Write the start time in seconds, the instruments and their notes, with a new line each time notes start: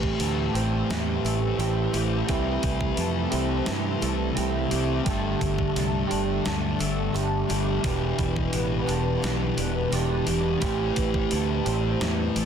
Already playing: fingered electric bass A1, clean electric guitar A2 E3 G3 C4 G4, distorted electric guitar A2 E3 A3, twelve-string acoustic guitar E3
0.03 kick
0.20 fingered electric bass D2, twelve-string acoustic guitar A3, open hi-hat
0.53 fingered electric bass A1, clean electric guitar A2 E3 G3 C4 G4, twelve-string acoustic guitar C4, open hi-hat
0.90 fingered electric bass E2, twelve-string acoustic guitar E3, snare, open hi-hat
1.25 fingered electric bass A1, twelve-string acoustic guitar A3, open hi-hat
1.58 fingered electric bass A1, clean electric guitar A2 E3 G3 C4 G4, twelve-string acoustic guitar C4, open hi-hat
1.93 fingered electric bass A1, distorted electric guitar A2 E3 A3, twelve-string acoustic guitar G4, open hi-hat
2.27 fingered electric bass C2, clean electric guitar C3 E3 A3 E4 G4, distorted electric guitar C3 G3, twelve-string acoustic guitar E3, kick, open hi-hat
2.31 distorted electric guitar C4
2.63 fingered electric bass C2, kick, open hi-hat
2.81 kick
2.97 fingered electric bass F2, twelve-string acoustic guitar A3, open hi-hat
3.31 fingered electric bass C2, clean electric guitar C3 E3 A3 E4 G4, twelve-string acoustic guitar C4, open hi-hat
3.66 fingered electric bass G2, twelve-string acoustic guitar E3, snare, open hi-hat
4.01 fingered electric bass C2, twelve-string acoustic guitar A3, open hi-hat
4.35 fingered electric bass C2, clean electric guitar C3 E3 A3 E4 G4, twelve-string acoustic guitar C4, open hi-hat
4.71 fingered electric bass C2, distorted electric guitar C3 G3 C4, twelve-string acoustic guitar G4, open hi-hat
5.04 fingered electric bass G1, distorted electric guitar G2 D3 G3, clean electric guitar G3 A3 D4 G4, twelve-string acoustic guitar A3, kick, open hi-hat
5.41 fingered electric bass G1, kick, open hi-hat
5.59 kick
5.76 fingered electric bass C2, twelve-string acoustic guitar A3, snare, open hi-hat
6.07 clean electric guitar G3 A3 D4 G4, twelve-string acoustic guitar D4, open hi-hat
6.12 fingered electric bass G1
6.45 fingered electric bass D2, twelve-string acoustic guitar A3, snare, open hi-hat
6.79 fingered electric bass G1, twelve-string acoustic guitar A3, open hi-hat
7.13 fingered electric bass G1, clean electric guitar G3 A3 D4 G4, twelve-string acoustic guitar D4, open hi-hat
7.47 fingered electric bass G1, distorted electric guitar D3 G3, twelve-string acoustic guitar G4, open hi-hat
7.51 distorted electric guitar G2
7.82 fingered electric bass E1, distorted electric guitar E2 B2 E3, clean electric guitar E2 B2 E3 G3 D4 G4, twelve-string acoustic guitar E3, kick, open hi-hat
8.19 fingered electric bass E1, kick, open hi-hat
8.36 kick
8.53 fingered electric bass A1, twelve-string acoustic guitar B3, open hi-hat
8.86 fingered electric bass E1, clean electric guitar E2 B2 E3 G3 D4 G4, twelve-string acoustic guitar D4, open hi-hat
9.22 fingered electric bass B1, twelve-string acoustic guitar E3, snare, open hi-hat
9.58 fingered electric bass E1, twelve-string acoustic guitar B3, open hi-hat
9.91 fingered electric bass E1, clean electric guitar E2 B2 E3 G3 D4 G4, twelve-string acoustic guitar D4, open hi-hat
10.26 fingered electric bass E1, distorted electric guitar E2 B2 E3, twelve-string acoustic guitar G4, open hi-hat
10.60 fingered electric bass A1, clean electric guitar A2 E3 G3 C4 G4, distorted electric guitar A2 E3, twelve-string acoustic guitar E3, kick, open hi-hat
10.64 distorted electric guitar A3
10.96 fingered electric bass A1, kick, open hi-hat
11.14 kick
11.31 fingered electric bass D2, twelve-string acoustic guitar A3, open hi-hat
11.65 fingered electric bass A1, clean electric guitar A2 E3 G3 C4 G4, twelve-string acoustic guitar C4, open hi-hat
12.01 fingered electric bass E2, twelve-string acoustic guitar E3, snare, open hi-hat
12.36 fingered electric bass A1, twelve-string acoustic guitar A3, open hi-hat